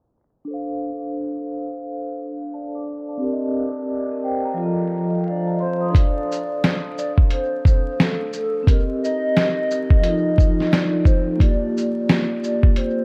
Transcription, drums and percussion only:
5.95 kick loud
5.95 closed hi-hat medium
6.32 shaker soft
6.64 snare loud
6.64 closed hi-hat medium
6.98 shaker soft
7.18 kick medium
7.30 closed hi-hat medium
7.65 kick medium
7.65 shaker soft
8.00 snare loud
8.00 closed hi-hat medium
8.33 shaker soft
8.67 kick loud
8.67 closed hi-hat medium
9.04 shaker soft
9.37 snare loud
9.37 closed hi-hat medium
9.71 shaker soft
9.90 kick medium
10.03 closed hi-hat medium
10.38 kick medium
10.38 shaker soft
10.60 snare soft
10.73 snare loud
10.73 closed hi-hat medium
11.05 kick medium
11.05 shaker soft
11.40 kick loud
11.40 closed hi-hat medium
11.77 shaker soft
12.09 snare loud
12.09 closed hi-hat medium
12.44 shaker soft
12.63 kick medium
12.76 closed hi-hat medium

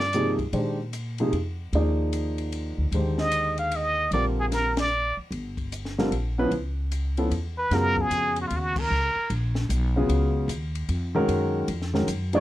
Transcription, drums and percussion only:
0.00 snare soft
0.13 hi-hat pedal medium
0.13 ride medium
0.39 kick soft
0.39 ride soft
0.53 ride medium
0.93 hi-hat pedal medium
0.93 ride medium
1.18 ride soft
1.33 ride medium
1.73 ride soft
2.13 hi-hat pedal soft
2.13 ride medium
2.38 ride soft
2.52 ride medium
2.92 ride medium
3.18 snare soft
3.32 hi-hat pedal soft
3.32 ride medium
3.58 ride soft
3.71 ride medium
4.12 ride medium
4.52 snare soft
4.52 hi-hat pedal medium
4.52 ride medium
4.77 snare medium
4.77 ride medium
5.32 ride medium
5.57 kick soft
5.57 ride soft
5.72 hi-hat pedal medium
5.72 ride medium
5.85 snare soft
5.99 snare soft
6.12 ride medium
6.51 ride soft
6.92 hi-hat pedal medium
6.92 ride medium
7.17 ride soft
7.31 ride medium
7.71 snare soft
7.71 ride medium
7.97 kick medium
8.11 hi-hat pedal medium
8.11 ride medium
8.36 ride medium
8.50 ride medium
8.76 kick medium
8.76 crash medium
9.30 ride medium
9.55 snare soft
9.70 hi-hat pedal medium
9.70 ride medium
10.09 ride medium
10.49 hi-hat pedal medium
10.49 ride medium
10.75 ride soft
10.89 ride medium
11.29 ride medium
11.68 ride medium
11.82 snare soft
11.95 snare soft
12.08 hi-hat pedal medium
12.08 ride medium
12.33 ride soft

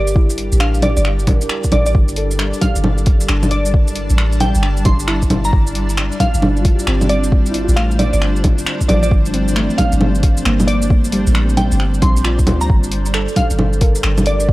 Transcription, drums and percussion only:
0.07 shaker medium
0.16 kick loud
0.30 shaker soft
0.38 open hi-hat medium
0.52 shaker medium
0.60 finger snap loud
0.74 shaker soft
0.82 open hi-hat medium
0.82 low bongo medium
0.97 shaker medium
1.05 finger snap medium
1.19 shaker soft
1.27 kick loud
1.27 open hi-hat medium
1.27 low bongo medium
1.41 shaker medium
1.49 finger snap loud
1.64 kick medium
1.64 shaker soft
1.72 open hi-hat medium
1.72 low bongo medium
1.86 shaker medium
1.95 kick loud
2.08 shaker soft
2.16 open hi-hat medium
2.31 shaker medium
2.39 finger snap loud
2.54 shaker soft
2.62 kick medium
2.62 open hi-hat medium
2.62 low bongo medium
2.76 shaker medium
2.84 low bongo medium
2.98 shaker soft
3.06 kick loud
3.06 open hi-hat medium
3.20 shaker medium
3.28 finger snap loud
3.43 low bongo medium
3.43 shaker soft
3.51 open hi-hat medium
3.65 shaker medium
3.74 kick loud
3.88 shaker soft
3.96 open hi-hat medium
4.10 shaker medium
4.18 finger snap loud
4.32 shaker soft
4.40 open hi-hat medium
4.40 low bongo medium
4.55 shaker medium
4.63 finger snap medium
4.77 shaker soft
4.85 kick loud
4.85 open hi-hat medium
4.85 low bongo medium
4.99 shaker medium
5.08 finger snap loud
5.22 kick medium
5.22 shaker soft
5.30 open hi-hat medium
5.30 low bongo medium
5.44 shaker medium
5.53 kick loud
5.67 shaker soft
5.75 open hi-hat medium
5.89 shaker medium
5.97 finger snap loud
6.12 shaker soft
6.20 kick medium
6.20 open hi-hat medium
6.20 low bongo medium
6.34 shaker medium
6.42 low bongo medium
6.57 shaker soft
6.65 kick loud
6.65 open hi-hat medium
6.79 shaker medium
6.87 finger snap loud
7.01 low bongo medium
7.01 shaker soft
7.09 open hi-hat medium
7.24 shaker medium
7.32 kick loud
7.46 shaker soft
7.54 open hi-hat medium
7.69 shaker medium
7.77 finger snap medium
7.91 shaker soft
7.99 open hi-hat medium
7.99 low bongo medium
8.13 shaker medium
8.22 finger snap medium
8.36 shaker soft
8.44 kick loud
8.44 open hi-hat medium
8.44 low bongo medium
8.58 shaker medium
8.66 finger snap loud
8.81 kick medium
8.81 shaker soft
8.89 open hi-hat medium
8.89 low bongo medium
9.03 shaker medium
9.11 kick loud
9.26 shaker soft
9.34 open hi-hat medium
9.48 shaker medium
9.56 finger snap loud
9.70 shaker soft
9.78 kick medium
9.78 open hi-hat medium
9.78 low bongo medium
9.92 shaker medium
10.01 low bongo medium
10.15 shaker soft
10.23 kick loud
10.23 open hi-hat medium
10.37 shaker medium
10.45 finger snap loud
10.60 low bongo medium
10.60 shaker soft
10.68 open hi-hat medium
10.82 shaker medium
10.90 kick loud
11.04 shaker soft
11.12 open hi-hat medium
11.27 shaker medium
11.35 finger snap loud
11.49 shaker soft
11.57 open hi-hat medium
11.57 low bongo medium
11.72 shaker medium
11.80 finger snap medium
11.94 shaker soft
12.02 kick loud
12.02 open hi-hat medium
12.02 low bongo medium
12.17 shaker medium
12.24 finger snap loud
12.39 kick medium
12.39 shaker soft
12.47 open hi-hat medium
12.47 low bongo medium
12.61 shaker medium
12.70 kick loud
12.84 shaker soft
12.92 open hi-hat medium
13.06 shaker medium
13.14 finger snap loud
13.28 shaker soft
13.36 kick medium
13.36 open hi-hat medium
13.36 low bongo medium
13.51 shaker medium
13.59 low bongo medium
13.73 shaker soft
13.81 kick loud
13.81 open hi-hat medium
13.95 shaker medium
14.03 finger snap loud
14.18 low bongo medium
14.18 shaker soft
14.26 open hi-hat medium
14.40 shaker medium
14.49 kick loud

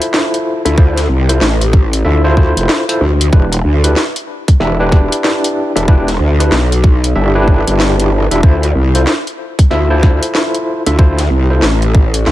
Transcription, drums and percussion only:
0.02 closed hi-hat medium
0.14 snare loud
0.34 closed hi-hat medium
0.66 closed hi-hat medium
0.78 kick loud
0.97 snare soft
0.97 closed hi-hat medium
1.29 closed hi-hat medium
1.41 snare loud
1.61 closed hi-hat soft
1.73 kick loud
1.93 closed hi-hat medium
2.37 kick medium
2.57 closed hi-hat medium
2.69 snare loud
2.89 closed hi-hat medium
3.21 closed hi-hat medium
3.33 kick loud
3.52 closed hi-hat soft
3.84 closed hi-hat medium
3.96 snare loud
4.16 closed hi-hat soft
4.48 kick loud
4.48 closed hi-hat medium
4.60 snare soft
4.92 kick loud
4.92 snare soft
5.12 closed hi-hat medium
5.24 snare loud
5.44 closed hi-hat medium
5.77 closed hi-hat medium
5.88 kick loud
6.08 snare soft
6.08 closed hi-hat soft
6.40 closed hi-hat medium
6.52 snare loud
6.72 closed hi-hat soft
6.84 kick loud
7.04 closed hi-hat medium
7.48 kick medium
7.68 closed hi-hat medium
7.80 snare loud
8.00 closed hi-hat medium
8.31 closed hi-hat medium
8.43 kick loud
8.63 closed hi-hat medium
8.95 closed hi-hat medium
9.07 snare loud
9.27 closed hi-hat soft
9.59 kick loud
9.59 closed hi-hat medium
9.71 snare soft
10.03 kick loud
10.03 snare soft
10.23 closed hi-hat medium
10.35 snare loud
10.55 closed hi-hat medium
10.86 closed hi-hat medium
10.99 kick loud
11.19 snare soft
11.19 closed hi-hat medium
11.62 snare loud
11.82 closed hi-hat soft
11.95 kick loud
12.14 closed hi-hat medium
12.26 snare medium

